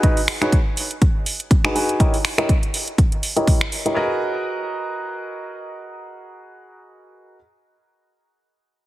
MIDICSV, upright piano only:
0, 0, Header, 1, 2, 480
1, 0, Start_track
1, 0, Key_signature, 5, "minor"
1, 0, Tempo, 491803
1, 31, Time_signature, 4, 2, 24, 8
1, 8651, End_track
2, 0, Start_track
2, 0, Title_t, "Upright piano"
2, 0, Program_c, 0, 0
2, 30, Note_on_c, 0, 63, 92
2, 31, Note_on_c, 0, 66, 84
2, 31, Note_on_c, 0, 68, 84
2, 31, Note_on_c, 0, 71, 85
2, 31, Note_on_c, 0, 75, 103
2, 174, Note_off_c, 0, 63, 0
2, 174, Note_off_c, 0, 66, 0
2, 174, Note_off_c, 0, 68, 0
2, 175, Note_off_c, 0, 71, 0
2, 175, Note_off_c, 0, 75, 0
2, 404, Note_on_c, 0, 66, 87
2, 404, Note_on_c, 0, 71, 83
2, 404, Note_on_c, 0, 73, 99
2, 405, Note_on_c, 0, 63, 95
2, 405, Note_on_c, 0, 68, 88
2, 524, Note_off_c, 0, 66, 0
2, 524, Note_off_c, 0, 73, 0
2, 525, Note_off_c, 0, 63, 0
2, 525, Note_off_c, 0, 68, 0
2, 525, Note_off_c, 0, 71, 0
2, 1603, Note_on_c, 0, 63, 95
2, 1603, Note_on_c, 0, 66, 86
2, 1603, Note_on_c, 0, 68, 88
2, 1603, Note_on_c, 0, 71, 87
2, 1604, Note_on_c, 0, 80, 106
2, 1695, Note_off_c, 0, 63, 0
2, 1695, Note_off_c, 0, 66, 0
2, 1695, Note_off_c, 0, 68, 0
2, 1695, Note_off_c, 0, 71, 0
2, 1695, Note_off_c, 0, 80, 0
2, 1710, Note_on_c, 0, 63, 90
2, 1711, Note_on_c, 0, 66, 82
2, 1711, Note_on_c, 0, 68, 85
2, 1711, Note_on_c, 0, 71, 83
2, 1711, Note_on_c, 0, 80, 98
2, 1925, Note_off_c, 0, 63, 0
2, 1925, Note_off_c, 0, 66, 0
2, 1925, Note_off_c, 0, 71, 0
2, 1925, Note_off_c, 0, 80, 0
2, 1926, Note_off_c, 0, 68, 0
2, 1951, Note_on_c, 0, 64, 90
2, 1951, Note_on_c, 0, 67, 87
2, 1951, Note_on_c, 0, 70, 83
2, 1951, Note_on_c, 0, 73, 83
2, 1951, Note_on_c, 0, 75, 98
2, 2094, Note_off_c, 0, 64, 0
2, 2094, Note_off_c, 0, 70, 0
2, 2094, Note_off_c, 0, 73, 0
2, 2095, Note_off_c, 0, 67, 0
2, 2095, Note_off_c, 0, 75, 0
2, 2322, Note_on_c, 0, 64, 91
2, 2322, Note_on_c, 0, 67, 81
2, 2322, Note_on_c, 0, 70, 82
2, 2322, Note_on_c, 0, 73, 82
2, 2322, Note_on_c, 0, 75, 102
2, 2443, Note_off_c, 0, 64, 0
2, 2443, Note_off_c, 0, 67, 0
2, 2443, Note_off_c, 0, 73, 0
2, 2444, Note_off_c, 0, 70, 0
2, 2444, Note_off_c, 0, 75, 0
2, 3283, Note_on_c, 0, 64, 90
2, 3283, Note_on_c, 0, 70, 82
2, 3283, Note_on_c, 0, 73, 85
2, 3283, Note_on_c, 0, 75, 101
2, 3284, Note_on_c, 0, 67, 83
2, 3491, Note_off_c, 0, 70, 0
2, 3491, Note_off_c, 0, 73, 0
2, 3491, Note_off_c, 0, 75, 0
2, 3492, Note_off_c, 0, 64, 0
2, 3492, Note_off_c, 0, 67, 0
2, 3762, Note_on_c, 0, 73, 74
2, 3763, Note_on_c, 0, 64, 77
2, 3763, Note_on_c, 0, 67, 71
2, 3763, Note_on_c, 0, 70, 73
2, 3763, Note_on_c, 0, 75, 87
2, 3854, Note_off_c, 0, 73, 0
2, 3855, Note_off_c, 0, 64, 0
2, 3855, Note_off_c, 0, 67, 0
2, 3855, Note_off_c, 0, 70, 0
2, 3855, Note_off_c, 0, 75, 0
2, 3869, Note_on_c, 0, 66, 77
2, 3869, Note_on_c, 0, 68, 72
2, 3869, Note_on_c, 0, 70, 72
2, 3869, Note_on_c, 0, 71, 74
2, 3869, Note_on_c, 0, 75, 85
2, 7184, Note_off_c, 0, 66, 0
2, 7184, Note_off_c, 0, 68, 0
2, 7184, Note_off_c, 0, 70, 0
2, 7184, Note_off_c, 0, 71, 0
2, 7184, Note_off_c, 0, 75, 0
2, 8651, End_track
0, 0, End_of_file